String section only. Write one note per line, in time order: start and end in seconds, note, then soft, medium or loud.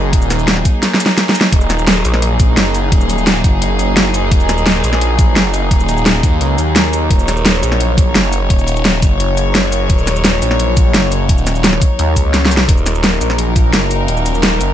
0.00 12.65 F#3 medium
0.00 12.65 A#3 medium
0.00 12.65 D#4 medium
0.00 1.50 G#4 medium
1.52 7.08 G#4 medium
7.11 12.67 C#5 medium
12.69 14.74 F#3 medium
12.69 14.74 A#3 medium
12.69 14.74 D#4 medium
12.69 14.74 A#4 medium